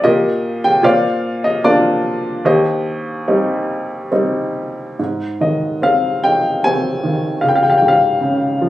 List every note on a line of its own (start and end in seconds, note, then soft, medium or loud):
0.04 0.81 A#2 medium
0.04 0.80 G4 medium
0.04 0.80 A#4 medium
0.04 0.66 D#5 medium
0.64 0.85 G5 medium
0.83 2.40 A#2 medium
0.83 2.01 C5 medium
0.83 1.63 D5 medium
0.83 1.46 F5 medium
1.44 1.65 D#5 medium
1.64 2.42 A#3 soft
1.64 2.43 C4 soft
1.64 2.43 D4 soft
1.64 2.41 F4 medium
1.64 2.47 D5 medium
2.45 4.95 D#2 medium
2.45 4.09 G4 medium
2.45 4.08 C5 medium
2.45 4.08 D#5 medium
3.28 4.10 G3 soft
3.28 4.10 C4 soft
3.28 4.10 D#4 medium
4.12 4.96 G3 soft
4.12 4.96 C4 soft
4.12 4.96 D#4 medium
4.99 7.40 G#2 soft
5.41 7.00 D#3 soft
5.41 5.83 D#5 medium
5.82 6.64 C4 soft
5.82 6.20 F5 medium
6.24 7.41 D#4 soft
6.24 6.65 G5 medium
6.64 7.42 C4 soft
6.64 7.46 G#5 medium
7.04 7.42 D#3 soft
7.41 8.69 C#2 medium
7.41 7.50 F5 medium
7.48 7.57 G5 medium
7.55 7.65 F5 medium
7.63 7.72 G5 medium
7.70 7.79 F5 medium
7.78 7.87 G5 medium
7.82 8.69 G#2 soft
7.88 8.20 F5 medium
8.21 8.69 C#3 soft
8.61 8.69 F3 soft